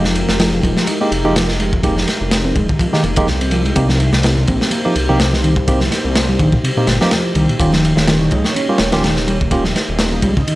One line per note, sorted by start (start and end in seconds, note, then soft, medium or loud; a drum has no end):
0.00 0.25 F1 loud
0.00 0.39 F3 medium
0.00 3.72 G#3 medium
0.00 7.56 D#4 medium
0.00 3.72 G4 medium
0.00 3.72 A#4 medium
0.04 snare soft
0.04 muted conga medium
0.04 high conga loud
0.15 ride medium
0.29 0.61 F1 loud
0.29 snare medium
0.29 muted conga medium
0.39 0.52 F3 medium
0.39 snare loud
0.39 ride medium
0.53 0.60 F3 medium
0.63 0.75 D#1 medium
0.63 0.86 F3 medium
0.63 kick medium
0.63 ride medium
0.63 muted conga medium
0.63 high conga medium
0.77 snare medium
0.87 1.00 D#4 medium
0.87 ride medium
0.87 muted conga medium
1.01 1.10 G#3 medium
1.01 1.08 A#3 medium
1.01 1.10 A#3 medium
1.01 1.10 D#4 medium
1.01 1.10 G4 medium
1.11 2.05 F1 medium
1.11 ride medium
1.25 1.35 F3 medium
1.25 1.34 G#3 medium
1.25 1.34 A#3 medium
1.25 1.34 D#4 medium
1.25 1.34 G4 loud
1.25 muted conga medium
1.25 high conga loud
1.36 1.48 F3 medium
1.36 snare loud
1.36 ride medium
1.36 low conga medium
1.48 snare soft
1.48 muted conga medium
1.59 1.69 G#3 loud
1.59 ride medium
1.73 kick medium
1.83 1.95 G#3 medium
1.83 1.95 A#3 medium
1.83 1.95 D#4 medium
1.83 1.95 G4 medium
1.83 kick loud
1.83 ride medium
1.83 muted conga medium
1.97 snare soft
1.97 high conga loud
2.07 snare soft
2.07 ride medium
2.07 muted conga soft
2.21 2.53 F1 loud
2.31 snare loud
2.31 ride medium
2.45 2.54 C4 loud
2.45 muted conga medium
2.55 2.67 D#1 medium
2.55 2.65 G#3 loud
2.55 kick loud
2.55 ride medium
2.55 high conga medium
2.68 2.73 D#3 medium
2.68 kick medium
2.68 muted conga medium
2.79 2.85 F3 medium
2.79 kick loud
2.79 ride medium
2.93 3.03 D#3 loud
2.93 3.02 G#3 medium
2.93 3.02 A#3 medium
2.93 3.02 D#4 medium
2.93 3.02 G4 medium
2.93 snare soft
3.04 3.29 F1 medium
3.04 3.13 A#3 medium
3.04 ride medium
3.04 muted conga medium
3.16 3.26 G#3 medium
3.16 3.26 A#3 medium
3.16 3.27 A#3 medium
3.16 3.26 D#4 medium
3.16 3.26 G4 loud
3.16 kick loud
3.16 ride medium
3.16 high conga medium
3.27 3.73 C2 medium
3.27 snare soft
3.27 muted conga medium
3.27 low conga medium
3.41 3.51 C4 medium
3.41 ride medium
3.51 3.61 F3 medium
3.51 ride medium
3.65 3.75 G#3 medium
3.65 ride soft
3.65 muted conga medium
3.75 4.10 C2 loud
3.75 4.23 C3 medium
3.75 3.87 A#3 medium
3.75 7.56 A#3 medium
3.75 3.87 C4 medium
3.75 3.87 D#4 medium
3.75 3.87 G4 medium
3.75 10.55 G4 medium
3.75 7.56 C5 medium
3.75 kick loud
3.75 ride medium
3.75 muted conga medium
3.89 snare soft
3.89 high conga medium
4.00 ride medium
4.13 4.45 C2 loud
4.13 snare medium
4.13 muted conga medium
4.23 4.36 C3 medium
4.23 snare loud
4.23 ride medium
4.37 4.45 C3 medium
4.37 muted conga medium
4.47 4.59 A#1 medium
4.47 4.71 C4 medium
4.47 kick medium
4.47 ride medium
4.47 high conga medium
4.61 snare medium
4.71 4.85 A#3 medium
4.71 ride medium
4.71 muted conga medium
4.85 4.93 F3 medium
4.85 4.94 A#3 medium
4.85 4.94 C4 medium
4.85 4.94 D#4 medium
4.85 4.94 G4 medium
4.95 5.89 C2 medium
4.95 ride medium
4.95 muted conga medium
5.09 5.19 C3 medium
5.09 5.18 A#3 medium
5.09 5.18 C4 medium
5.09 5.18 D#4 medium
5.09 5.18 G4 loud
5.09 high conga medium
5.20 5.32 C3 medium
5.20 snare loud
5.20 ride medium
5.20 low conga medium
5.33 snare soft
5.33 muted conga medium
5.44 5.53 D#3 loud
5.44 ride medium
5.56 kick loud
5.56 muted conga medium
5.68 5.79 A#3 medium
5.68 5.79 C4 medium
5.68 5.79 D#4 medium
5.68 5.79 G4 medium
5.68 kick loud
5.68 ride medium
5.81 snare soft
5.81 high conga medium
5.91 snare soft
5.91 ride medium
5.91 muted conga medium
6.05 6.37 C2 loud
6.16 snare loud
6.16 ride medium
6.16 muted conga medium
6.29 6.39 G3 loud
6.39 6.51 A#1 medium
6.39 6.49 D#3 loud
6.39 kick loud
6.39 ride medium
6.39 high conga medium
6.52 6.57 A#2 medium
6.52 kick medium
6.52 muted conga medium
6.63 6.69 C3 medium
6.63 ride loud
6.77 6.86 A#2 loud
6.77 6.86 A#3 medium
6.77 6.86 C4 medium
6.77 6.86 D#4 medium
6.77 6.86 G4 medium
6.77 muted conga medium
6.87 6.99 G1 medium
6.87 6.97 A#2 loud
6.87 snare medium
6.87 ride medium
7.01 7.35 F3 medium
7.01 7.10 A#3 medium
7.01 7.10 C4 medium
7.01 7.10 D#4 medium
7.01 7.10 G4 loud
7.01 snare medium
7.01 high conga medium
7.11 snare loud
7.11 ride medium
7.11 muted conga medium
7.11 low conga medium
7.34 7.47 C2 loud
7.34 7.48 D#3 medium
7.34 ride medium
7.34 muted conga medium
7.49 7.53 A#2 medium
7.49 ride soft
7.59 7.93 D#1 loud
7.59 8.06 D#3 medium
7.59 7.71 A#3 medium
7.59 10.55 A#3 medium
7.59 7.71 C#4 medium
7.59 10.55 D#4 medium
7.59 7.71 F4 medium
7.59 7.71 G4 medium
7.59 9.50 C#5 medium
7.59 kick loud
7.59 ride medium
7.73 snare soft
7.73 muted conga medium
7.73 high conga medium
7.85 ride medium
7.97 8.29 D#1 loud
7.97 snare medium
7.97 muted conga medium
8.08 8.20 D#3 medium
8.08 snare loud
8.08 ride medium
8.21 8.28 D#3 medium
8.31 8.43 C#2 medium
8.31 8.55 D#4 medium
8.31 kick medium
8.31 ride medium
8.31 muted conga medium
8.31 high conga medium
8.45 snare medium
8.55 8.68 C#4 medium
8.55 ride medium
8.55 muted conga medium
8.69 8.76 G3 medium
8.69 8.78 A#3 medium
8.69 8.78 C#4 medium
8.69 8.78 F4 medium
8.69 8.78 G4 medium
8.78 9.73 D#1 medium
8.78 snare loud
8.78 ride medium
8.92 9.03 D#3 medium
8.92 9.02 A#3 medium
8.92 9.02 C#4 medium
8.92 9.02 F4 medium
8.92 9.02 G4 loud
8.92 snare loud
8.92 ride medium
8.92 muted conga medium
8.92 high conga loud
9.03 9.16 D#3 medium
9.03 snare loud
9.03 ride medium
9.03 low conga medium
9.16 snare soft
9.16 muted conga medium
9.28 9.37 G3 loud
9.28 ride medium
9.41 kick medium
9.51 9.63 A#3 medium
9.51 9.63 C#4 medium
9.51 9.63 F4 medium
9.51 9.63 G4 medium
9.51 10.55 D#5 medium
9.51 kick loud
9.51 ride medium
9.51 muted conga medium
9.64 snare soft
9.64 high conga medium
9.75 snare soft
9.75 ride medium
9.75 muted conga medium
9.89 10.21 D#1 loud
9.99 snare loud
9.99 ride medium
10.12 10.23 A#3 loud
10.12 muted conga medium
10.22 10.34 C#2 medium
10.22 10.33 G3 loud
10.22 kick medium
10.22 ride medium
10.22 high conga medium
10.37 10.41 C#3 medium
10.37 kick loud
10.37 muted conga medium
10.37 low conga medium
10.47 10.53 D#3 medium
10.47 ride medium